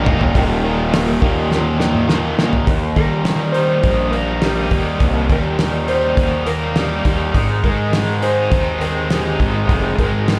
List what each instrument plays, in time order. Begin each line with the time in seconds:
Already playing: overdriven electric guitar D#2 A#2
0.05 fingered electric bass F1, overdriven electric guitar D#3 G3 A#3 D#4, steel-string acoustic guitar G4 A#4, floor tom
0.09 steel-string acoustic guitar D#4
0.19 fingered electric bass D#1, overdriven electric guitar D#3 G3 A#3 D#4, muted overdriven electric guitar stroke, floor tom
0.34 fingered electric bass D#1, overdriven electric guitar D#2 A#2 D#3, steel-string acoustic guitar D#3 A#3 D#4 G4 A#4, kick, open hi-hat
0.63 overdriven electric guitar D#2 A#2 D#3, steel-string acoustic guitar D#4 G4 A#4
0.93 overdriven electric guitar D#2 A#2 D#3, steel-string acoustic guitar A#3 D#4 G4 A#4, snare, open hi-hat
1.21 overdriven electric guitar D#2 A#2 D#3, fingered electric bass D#2, steel-string acoustic guitar D#4 G4 A#4, kick
1.50 overdriven electric guitar D#2 A#2 D#3, steel-string acoustic guitar D#3 A#3 D#4 G4 A#4, snare
1.79 overdriven electric guitar D#2 A#2 D#3, steel-string acoustic guitar G4 A#4, snare
1.83 steel-string acoustic guitar D#4
1.95 mid tom
2.07 overdriven electric guitar D#2 A#2 D#3, steel-string acoustic guitar A#3 D#4 G4, snare
2.12 steel-string acoustic guitar A#4
2.37 overdriven electric guitar D#2 A#2 D#3, steel-string acoustic guitar G4 A#4, snare
2.41 steel-string acoustic guitar D#4
2.53 floor tom
2.67 overdriven electric guitar D#2, fingered electric bass D#2, kick, open hi-hat
2.96 overdriven electric guitar A#2 G3, fingered electric bass D#3, electric slide guitar A#4, kick, open hi-hat
3.25 overdriven electric guitar D#3 G3, snare, open hi-hat
3.52 overdriven electric guitar G3 D#4, electric slide guitar C5, open hi-hat
3.83 fingered electric bass A#1, overdriven electric guitar D#3 A#3, kick, open hi-hat
4.11 overdriven electric guitar G3 A#3, electric slide guitar A#4, open hi-hat
4.41 overdriven electric guitar G3 D#4, electric slide guitar G4, snare, open hi-hat
4.70 fingered electric bass D#2, overdriven electric guitar D#3 A#3, kick, open hi-hat
5.00 fingered electric bass C2, overdriven electric guitar D#2, kick, open hi-hat
5.30 fingered electric bass D#2, overdriven electric guitar A#2 G3, electric slide guitar A#4, kick, open hi-hat
5.58 overdriven electric guitar D#3 G3, snare, open hi-hat
5.88 overdriven electric guitar G3 D#4, electric slide guitar C5, open hi-hat
6.17 fingered electric bass D#2, overdriven electric guitar D#3 A#3, kick, open hi-hat
6.46 overdriven electric guitar G3 A#3, electric slide guitar A#4, open hi-hat
6.76 overdriven electric guitar G3 D#4, electric slide guitar G4, snare, open hi-hat
7.05 fingered electric bass D#2, overdriven electric guitar D#3 A#3, kick, open hi-hat
7.34 fingered electric bass G#1, overdriven electric guitar G#2, kick, open hi-hat
7.64 fingered electric bass G#2, overdriven electric guitar D#3 G#3, electric slide guitar A#4, kick, open hi-hat
7.93 overdriven electric guitar D#3 G#3, snare, open hi-hat
8.22 overdriven electric guitar G#3 D#4, electric slide guitar C5, open hi-hat
8.51 fingered electric bass D#2, overdriven electric guitar D#3 C4, kick, open hi-hat
8.80 overdriven electric guitar G#3 C4, electric slide guitar A#4, open hi-hat
9.09 overdriven electric guitar G#3 D#4, electric slide guitar G4, snare, open hi-hat
9.38 fingered electric bass G#1, overdriven electric guitar D#3 C4, kick, open hi-hat
9.69 fingered electric bass F1, overdriven electric guitar G#2, kick, open hi-hat
9.98 fingered electric bass G#1, overdriven electric guitar D#3 G#3, electric slide guitar A#4, kick, open hi-hat
10.26 overdriven electric guitar D#3 G#3, snare, open hi-hat